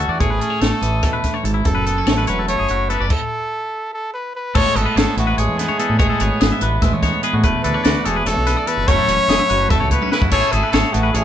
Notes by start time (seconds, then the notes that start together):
Already playing: D3 A3 F#4
0.00 C#4
0.08 E2 D5
0.19 A1 A2 G#4 C#5, kick, closed hi-hat
0.30 B4
0.40 C#4 A4, closed hi-hat
0.50 C#5
0.61 A1 A3 A4, snare, closed hi-hat
0.71 A4
0.81 A1 E3 G#4, closed hi-hat
1.03 B2 A4, kick, snare, closed hi-hat
1.13 B4
1.24 A2, kick, snare, closed hi-hat
1.34 C#5
1.43 G#1 G#2 A4, closed hi-hat
1.54 E4
1.65 F#1 F#2 A4, kick, closed hi-hat
1.75 B4
1.85 B3 A4, closed hi-hat
1.98 C#4
2.07 A1 A3 C#5, snare, closed hi-hat
2.18 B4
2.27 E1 F#3 B4 C#5, closed hi-hat
2.39 A4
2.48 A3 C#5, closed hi-hat
2.59 F#1 G#4
2.68 F#1 E4 F#4, closed hi-hat
2.89 B3 A4 B4, closed hi-hat
3.00 F#1 C#4 D5
3.10 A4, kick, crash
3.94 A4
4.14 B4
4.36 B4
4.55 A1 A2 G#3 A4 C#5, kick, crash
4.75 G#1 B3 G#4 A4, closed hi-hat
4.86 B4
4.95 G#1 G#4 A4 C#5, snare, closed hi-hat
5.16 A1 E3 F#4 A4, closed hi-hat
5.27 B4
5.37 A1 G#3 G#4 C#5, closed hi-hat
5.48 E2
5.57 B3 A4, snare, closed hi-hat
5.69 C#5
5.79 E2 B3 A4, closed hi-hat
5.89 A2
5.99 A1 A2 G#3 G#4 C#5, kick, closed hi-hat
6.09 A4
6.20 G#1 B3 C#5, closed hi-hat
6.41 G#1 B3 G#4, snare, closed hi-hat
6.52 E5
6.61 A1 E3 B4, closed hi-hat
6.82 A1 G#3 E5, kick, snare, closed hi-hat
6.93 E2 C#5
7.03 B3 C#5, kick, snare, closed hi-hat
7.23 E2 G#4 B4, closed hi-hat
7.33 A2 F#4
7.43 E1 E2 A3 B4, kick, closed hi-hat
7.63 D2 D4 A4 B4, closed hi-hat
7.74 C#5
7.84 D2 F#4 D5, snare, closed hi-hat
8.05 E1 E3 G#4 A4, closed hi-hat
8.16 B4
8.25 E1 A4 C#5, snare, closed hi-hat
8.36 B1
8.47 B4, snare, closed hi-hat
8.57 D5
8.67 E2 A4 B4, closed hi-hat
8.77 F1
8.88 F#1 F#2 F#3 A3 C#4 E4 C#5, kick, closed hi-hat
8.98 A4
9.08 E1 C#4 C#5, closed hi-hat
9.28 E1 E4 G#4, snare, closed hi-hat
9.40 E5
9.50 F#1 F#3 B4, closed hi-hat
9.70 F#1 A3 A4 E5, kick, closed hi-hat
9.80 C#2 C#5
9.91 B3 B4 C#5, kick, closed hi-hat
10.02 C#4, high tom
10.12 C#3 E4 B4, snare
10.21 F#2 F#4, kick
10.31 A1 A2 A3 C#4 E4 G#4 A4 C#5, kick, closed hi-hat, crash
10.52 G#1 E4 G#4 A4, closed hi-hat
10.63 B4
10.71 G#1 G#4 A4 C#5, snare, closed hi-hat
10.93 A1 A3 F#4 A4, closed hi-hat
11.03 B4
11.13 A1 C#4 G#4 C#5, closed hi-hat